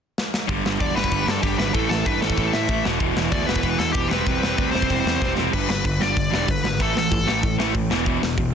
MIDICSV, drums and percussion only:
0, 0, Header, 1, 2, 480
1, 0, Start_track
1, 0, Key_signature, 1, "major"
1, 0, Tempo, 315292
1, 738, Time_signature, 4, 2, 24, 8
1, 13001, End_track
2, 0, Start_track
2, 0, Title_t, "Drums"
2, 276, Note_on_c, 9, 38, 70
2, 428, Note_off_c, 9, 38, 0
2, 516, Note_on_c, 9, 38, 86
2, 668, Note_off_c, 9, 38, 0
2, 746, Note_on_c, 9, 36, 85
2, 750, Note_on_c, 9, 46, 43
2, 899, Note_off_c, 9, 36, 0
2, 903, Note_off_c, 9, 46, 0
2, 1004, Note_on_c, 9, 38, 117
2, 1157, Note_off_c, 9, 38, 0
2, 1225, Note_on_c, 9, 36, 102
2, 1233, Note_on_c, 9, 46, 45
2, 1377, Note_off_c, 9, 36, 0
2, 1385, Note_off_c, 9, 46, 0
2, 1484, Note_on_c, 9, 38, 98
2, 1582, Note_on_c, 9, 36, 90
2, 1636, Note_off_c, 9, 38, 0
2, 1698, Note_on_c, 9, 46, 54
2, 1702, Note_off_c, 9, 36, 0
2, 1702, Note_on_c, 9, 36, 91
2, 1850, Note_off_c, 9, 46, 0
2, 1854, Note_off_c, 9, 36, 0
2, 1955, Note_on_c, 9, 38, 113
2, 2107, Note_off_c, 9, 38, 0
2, 2180, Note_on_c, 9, 36, 113
2, 2185, Note_on_c, 9, 46, 59
2, 2332, Note_off_c, 9, 36, 0
2, 2338, Note_off_c, 9, 46, 0
2, 2431, Note_on_c, 9, 38, 101
2, 2583, Note_off_c, 9, 38, 0
2, 2647, Note_on_c, 9, 46, 44
2, 2657, Note_on_c, 9, 36, 96
2, 2800, Note_off_c, 9, 46, 0
2, 2809, Note_off_c, 9, 36, 0
2, 2912, Note_on_c, 9, 38, 104
2, 3064, Note_off_c, 9, 38, 0
2, 3138, Note_on_c, 9, 36, 110
2, 3138, Note_on_c, 9, 46, 51
2, 3290, Note_off_c, 9, 46, 0
2, 3291, Note_off_c, 9, 36, 0
2, 3389, Note_on_c, 9, 38, 104
2, 3496, Note_on_c, 9, 36, 94
2, 3541, Note_off_c, 9, 38, 0
2, 3614, Note_on_c, 9, 46, 43
2, 3616, Note_off_c, 9, 36, 0
2, 3616, Note_on_c, 9, 36, 90
2, 3766, Note_off_c, 9, 46, 0
2, 3769, Note_off_c, 9, 36, 0
2, 3859, Note_on_c, 9, 38, 126
2, 4011, Note_off_c, 9, 38, 0
2, 4086, Note_on_c, 9, 46, 55
2, 4094, Note_on_c, 9, 36, 124
2, 4238, Note_off_c, 9, 46, 0
2, 4246, Note_off_c, 9, 36, 0
2, 4345, Note_on_c, 9, 38, 104
2, 4497, Note_off_c, 9, 38, 0
2, 4567, Note_on_c, 9, 46, 41
2, 4572, Note_on_c, 9, 36, 95
2, 4719, Note_off_c, 9, 46, 0
2, 4725, Note_off_c, 9, 36, 0
2, 4822, Note_on_c, 9, 38, 114
2, 4974, Note_off_c, 9, 38, 0
2, 5050, Note_on_c, 9, 46, 52
2, 5055, Note_on_c, 9, 36, 95
2, 5202, Note_off_c, 9, 46, 0
2, 5208, Note_off_c, 9, 36, 0
2, 5313, Note_on_c, 9, 38, 101
2, 5414, Note_on_c, 9, 36, 85
2, 5466, Note_off_c, 9, 38, 0
2, 5527, Note_on_c, 9, 46, 53
2, 5531, Note_off_c, 9, 36, 0
2, 5531, Note_on_c, 9, 36, 84
2, 5679, Note_off_c, 9, 46, 0
2, 5683, Note_off_c, 9, 36, 0
2, 5783, Note_on_c, 9, 38, 118
2, 5936, Note_off_c, 9, 38, 0
2, 6004, Note_on_c, 9, 46, 54
2, 6011, Note_on_c, 9, 36, 120
2, 6156, Note_off_c, 9, 46, 0
2, 6164, Note_off_c, 9, 36, 0
2, 6261, Note_on_c, 9, 38, 118
2, 6414, Note_off_c, 9, 38, 0
2, 6494, Note_on_c, 9, 36, 102
2, 6494, Note_on_c, 9, 46, 43
2, 6646, Note_off_c, 9, 36, 0
2, 6646, Note_off_c, 9, 46, 0
2, 6750, Note_on_c, 9, 38, 113
2, 6902, Note_off_c, 9, 38, 0
2, 6978, Note_on_c, 9, 36, 107
2, 6982, Note_on_c, 9, 46, 50
2, 7130, Note_off_c, 9, 36, 0
2, 7135, Note_off_c, 9, 46, 0
2, 7236, Note_on_c, 9, 38, 95
2, 7342, Note_on_c, 9, 36, 84
2, 7388, Note_off_c, 9, 38, 0
2, 7462, Note_off_c, 9, 36, 0
2, 7462, Note_on_c, 9, 36, 96
2, 7469, Note_on_c, 9, 46, 46
2, 7614, Note_off_c, 9, 36, 0
2, 7621, Note_off_c, 9, 46, 0
2, 7722, Note_on_c, 9, 38, 107
2, 7874, Note_off_c, 9, 38, 0
2, 7943, Note_on_c, 9, 36, 114
2, 7958, Note_on_c, 9, 38, 58
2, 8095, Note_off_c, 9, 36, 0
2, 8110, Note_off_c, 9, 38, 0
2, 8192, Note_on_c, 9, 38, 75
2, 8344, Note_off_c, 9, 38, 0
2, 8425, Note_on_c, 9, 36, 96
2, 8429, Note_on_c, 9, 49, 87
2, 8577, Note_off_c, 9, 36, 0
2, 8581, Note_off_c, 9, 49, 0
2, 8680, Note_on_c, 9, 38, 98
2, 8832, Note_off_c, 9, 38, 0
2, 8906, Note_on_c, 9, 36, 100
2, 8909, Note_on_c, 9, 46, 55
2, 9058, Note_off_c, 9, 36, 0
2, 9061, Note_off_c, 9, 46, 0
2, 9159, Note_on_c, 9, 38, 103
2, 9312, Note_off_c, 9, 38, 0
2, 9390, Note_on_c, 9, 36, 114
2, 9395, Note_on_c, 9, 46, 59
2, 9542, Note_off_c, 9, 36, 0
2, 9548, Note_off_c, 9, 46, 0
2, 9646, Note_on_c, 9, 38, 110
2, 9798, Note_off_c, 9, 38, 0
2, 9871, Note_on_c, 9, 36, 112
2, 9872, Note_on_c, 9, 46, 57
2, 10024, Note_off_c, 9, 36, 0
2, 10024, Note_off_c, 9, 46, 0
2, 10126, Note_on_c, 9, 38, 107
2, 10278, Note_off_c, 9, 38, 0
2, 10352, Note_on_c, 9, 46, 51
2, 10353, Note_on_c, 9, 36, 95
2, 10505, Note_off_c, 9, 36, 0
2, 10505, Note_off_c, 9, 46, 0
2, 10610, Note_on_c, 9, 38, 100
2, 10763, Note_off_c, 9, 38, 0
2, 10832, Note_on_c, 9, 46, 54
2, 10834, Note_on_c, 9, 36, 94
2, 10985, Note_off_c, 9, 46, 0
2, 10987, Note_off_c, 9, 36, 0
2, 11091, Note_on_c, 9, 38, 105
2, 11243, Note_off_c, 9, 38, 0
2, 11315, Note_on_c, 9, 46, 46
2, 11316, Note_on_c, 9, 36, 106
2, 11467, Note_off_c, 9, 46, 0
2, 11468, Note_off_c, 9, 36, 0
2, 11569, Note_on_c, 9, 38, 109
2, 11721, Note_off_c, 9, 38, 0
2, 11792, Note_on_c, 9, 46, 58
2, 11794, Note_on_c, 9, 36, 119
2, 11944, Note_off_c, 9, 46, 0
2, 11947, Note_off_c, 9, 36, 0
2, 12041, Note_on_c, 9, 38, 114
2, 12193, Note_off_c, 9, 38, 0
2, 12275, Note_on_c, 9, 36, 96
2, 12275, Note_on_c, 9, 46, 41
2, 12427, Note_off_c, 9, 46, 0
2, 12428, Note_off_c, 9, 36, 0
2, 12532, Note_on_c, 9, 38, 105
2, 12684, Note_off_c, 9, 38, 0
2, 12753, Note_on_c, 9, 36, 105
2, 12755, Note_on_c, 9, 46, 52
2, 12905, Note_off_c, 9, 36, 0
2, 12907, Note_off_c, 9, 46, 0
2, 13001, End_track
0, 0, End_of_file